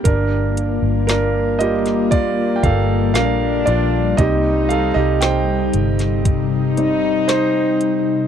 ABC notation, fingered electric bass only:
X:1
M:4/4
L:1/16
Q:1/4=58
K:Gm
V:1 name="Fingered electric bass" clef=bass
G,,,3 G,,,6- G,,, G,,,2 B,,,2 B,,,2 | C,,3 C,,3 G,,,8 z2 |]